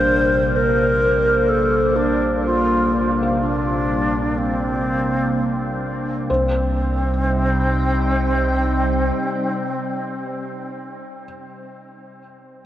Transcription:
Already playing: sub bass A#1, ambient pad A#2 A#3 D4 C5 F5, synth drone C3 G3, felt piano G3, alto flute C5
0.56 alto flute A#4
1.49 alto flute A4
1.96 alto flute D4
2.46 alto flute F4
3.22 felt piano F5
3.40 alto flute D4
4.38 alto flute C4
6.30 sub bass C2, ambient pad C3, alto flute C4, felt piano C5
6.34 synth drone C3 G3
6.45 ambient pad G3
6.60 ambient pad D#4
6.76 ambient pad C5
6.91 ambient pad G5

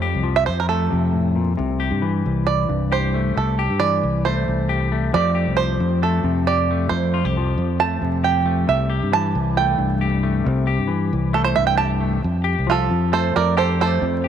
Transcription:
Already playing: fingered electric bass F2, clean electric guitar F2 C4
0.02 clean electric guitar G4
0.15 fingered electric bass C2
0.23 clean electric guitar F3
0.36 five-string banjo E5
0.46 fingered electric bass F2, five-string banjo C5
0.60 five-string banjo A#4
0.69 clean electric guitar A3, five-string banjo A4
0.90 fingered electric bass F2, clean electric guitar C3
1.13 clean electric guitar A2
1.36 clean electric guitar A#2
1.57 fingered electric bass C2, clean electric guitar C3
1.80 clean electric guitar G4
1.91 fingered electric bass G2
2.02 clean electric guitar E3
2.26 fingered electric bass C2
2.47 five-string banjo D5, muted clean electric guitar stroke
2.69 fingered electric bass C2, clean electric guitar G2
2.92 clean electric guitar G4, five-string banjo C5
3.14 clean electric guitar A3
3.36 fingered electric bass C2, five-string banjo A4, muted clean electric guitar stroke
3.59 clean electric guitar G4
3.70 fingered electric bass G2
3.80 clean electric guitar E3, five-string banjo D5
4.03 fingered electric bass C2
4.25 clean electric guitar A3, five-string banjo C5
4.48 fingered electric bass C2
4.69 clean electric guitar G4
4.92 clean electric guitar A3
5.13 clean electric guitar F2 F3 A3 C4 G4, fingered electric bass F2, five-string banjo D5
5.35 clean electric guitar G4
5.47 fingered electric bass C2
5.57 clean electric guitar F3, five-string banjo C5
5.80 fingered electric bass F2
6.02 clean electric guitar A3, five-string banjo A4
6.24 fingered electric bass F2, clean electric guitar C3
6.47 clean electric guitar G4, five-string banjo D5
6.71 clean electric guitar A3
6.89 fingered electric bass F2, clean electric guitar F2, five-string banjo C5
7.14 clean electric guitar F4
7.24 fingered electric bass C2, clean electric guitar G4
7.37 clean electric guitar F3
7.58 fingered electric bass F2
7.80 clean electric guitar A3, five-string banjo A5
8.02 fingered electric bass F2, clean electric guitar C3
8.24 clean electric guitar G4, five-string banjo G5
8.46 clean electric guitar A3
8.67 fingered electric bass C2, clean electric guitar C3, five-string banjo E5
8.90 clean electric guitar G4
9.03 fingered electric bass G2
9.12 clean electric guitar E3, five-string banjo A5
9.35 fingered electric bass C2
9.57 clean electric guitar A3, five-string banjo G5
9.78 fingered electric bass C2, clean electric guitar G2
10.01 clean electric guitar G4
10.23 clean electric guitar A3
10.44 fingered electric bass C2, clean electric guitar C3
10.67 clean electric guitar G4
10.79 fingered electric bass G2
10.87 clean electric guitar E3
11.13 fingered electric bass C2
11.33 clean electric guitar A3, five-string banjo A4
11.44 five-string banjo C5
11.55 fingered electric bass C2, clean electric guitar G2, five-string banjo E5
11.67 five-string banjo G5
11.77 clean electric guitar G4, five-string banjo A5
12.00 clean electric guitar A3
12.22 fingered electric bass F2, muted clean electric guitar stroke
12.44 clean electric guitar G4
12.59 fingered electric bass C2
12.67 clean electric guitar F3, five-string banjo F4
12.71 five-string banjo A4
12.90 fingered electric bass F2
13.12 clean electric guitar A3, five-string banjo A4 C5
13.34 fingered electric bass F2, five-string banjo A#4 D5, muted clean electric guitar stroke
13.57 clean electric guitar G4, five-string banjo A4 C5
13.80 clean electric guitar A3, five-string banjo A4 C5
14.02 clean electric guitar F2, fingered electric bass F2
14.24 clean electric guitar G4

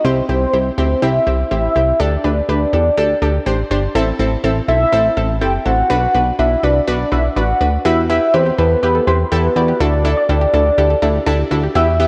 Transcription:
0.05 analog synth bass C2, synth pluck C4 E4 G4, soft synth lead C5
0.29 analog synth bass C2, synth pluck C4 E4 G4
0.53 analog synth bass C2, synth pluck C4 E4 G4
0.78 analog synth bass D2, synth pluck C4 E4 G4
1.02 analog synth bass C2, synth pluck C4 E4 G4, soft synth lead E5
1.27 analog synth bass C2, synth pluck C4 E4 G4
1.51 analog synth bass A1, synth pluck C4 E4 G4, soft synth lead E5
1.76 analog synth bass C2, synth pluck C4 E4 G4
2.00 analog synth bass D2, synth pluck D4 G4 A4, soft synth lead D5
2.24 analog synth bass D2, synth pluck D4 G4 B4
2.49 analog synth bass D2, synth pluck D4 G4 B4, soft synth lead D5
2.73 analog synth bass E2, synth pluck D4 G4 A4
2.97 analog synth bass D2, synth pluck D4 G4 A4
3.22 analog synth bass D2, synth pluck D4 G4 A4
3.46 analog synth bass A1, synth pluck D4 G4 C5
3.71 analog synth bass G1, synth pluck D4 G4 C5
3.95 analog synth bass A1, synth pluck C4 E4 A4
4.19 analog synth bass A1, synth pluck C4 E4 A4
4.44 analog synth bass A1, synth pluck C4 E4 A4
4.68 analog synth bass B1, synth pluck C4 E4 A4, soft synth lead E5
4.92 analog synth bass A1, synth pluck C4 E4 A4
5.17 analog synth bass A1, synth pluck C4 E4 A4
5.41 analog synth bass F#1, synth pluck C4 E4 A4, soft synth lead G5
5.66 analog synth bass A1, synth pluck C4 E4 A4, soft synth lead F#5
5.90 analog synth bass B1, synth pluck D4 F#4 B4
6.14 analog synth bass B1, synth pluck D4 F#4 B4
6.39 analog synth bass B1, synth pluck D4 F#4 B4, soft synth lead E5
6.63 analog synth bass C2, synth pluck D4 F#4 B4, soft synth lead D5
6.87 analog synth bass B1, synth pluck D4 F#4 B4, soft synth lead D5
7.12 analog synth bass B1, synth pluck D4 F#4 B4, soft synth lead E5
7.36 analog synth bass A1, synth pluck D4 F#4 B4, soft synth lead F#5
7.61 analog synth bass D2, synth pluck D4 F#4 B4
7.85 analog synth bass E2, synth pluck E4 G4 B4, synth arpeggio sound F#4, soft synth lead E5
8.09 synth arpeggio sound E4, synth pluck E4 G4 B4, soft synth lead E5
8.34 analog synth bass E2, synth pluck E4 G4 B4, synth arpeggio sound G4, soft synth lead C5
8.46 synth arpeggio sound G4
8.58 analog synth bass E2, synth pluck E4 G4 B4, synth arpeggio sound A4, soft synth lead B4
8.82 analog synth bass E2, synth pluck E4 G4 B4, synth arpeggio sound G4, soft synth lead B4
8.95 synth arpeggio sound A4
9.07 analog synth bass E2, synth pluck E4 G4 B4, synth arpeggio sound G4, soft synth lead C5
9.32 analog synth bass E2, synth pluck E4 G4 A4, synth arpeggio sound G4, soft synth lead B4
9.56 analog synth bass E2, synth pluck E4 G4 D5, synth arpeggio sound F#4, soft synth lead B4
9.68 synth arpeggio sound G4
9.80 analog synth bass D2, synth pluck D4 E4 A4, synth arpeggio sound F#4, soft synth lead D5
10.05 synth pluck D4 E4 A4, synth arpeggio sound E4
10.17 soft synth lead D5
10.29 analog synth bass D2, synth pluck D4 E4 A4, synth arpeggio sound G4, soft synth lead D5
10.41 synth arpeggio sound G4
10.54 analog synth bass D2, synth pluck D4 E4 A4, synth arpeggio sound A4
10.78 analog synth bass D2, synth pluck D4 E4 A4, synth arpeggio sound G4
10.90 synth arpeggio sound A4
11.02 analog synth bass D2, synth pluck D4 E4 A4, synth arpeggio sound G4
11.26 analog synth bass D2, synth pluck D4 E4 A4, synth arpeggio sound G4
11.51 analog synth bass D2, synth pluck D4 E4 A4, synth arpeggio sound F#4
11.63 synth arpeggio sound G4
11.75 analog synth bass E2, synth pluck B3 E4 G4, synth arpeggio sound F#4, soft synth lead E5
12.00 synth pluck B3 E4 G4, synth arpeggio sound E4, soft synth lead E5

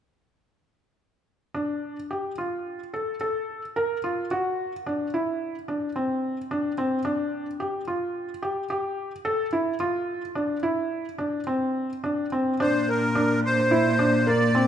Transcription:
1.54 felt piano D4
2.11 felt piano G4
2.38 felt piano F4
2.94 felt piano A4
3.21 felt piano A4
3.76 felt piano A#4
4.04 felt piano F4
4.31 felt piano F#4
4.86 felt piano D4
5.14 felt piano E4
5.68 felt piano D4
5.96 felt piano C4
6.51 felt piano D4
6.78 felt piano C4
7.05 felt piano D4
7.60 felt piano G4
7.88 felt piano F4
8.42 felt piano G4
8.70 felt piano G4
9.25 felt piano A4
9.53 felt piano E4
9.80 felt piano F4
10.35 felt piano D4
10.63 felt piano E4
11.18 felt piano D4
11.47 felt piano C4
12.04 felt piano D4
12.32 felt piano C4
12.60 cello A#2, felt piano D4, accordion C5
12.89 accordion A#4
13.15 felt piano D4
13.45 accordion C5
13.71 felt piano E4
13.99 felt piano D4
14.27 felt piano A#3, accordion D5
14.55 felt piano C4

